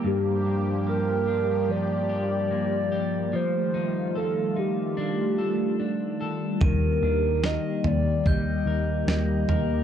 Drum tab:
SD |--------|--------|--o---o-|
FT |--------|--------|o--oo--o|
BD |--------|--------|o---o---|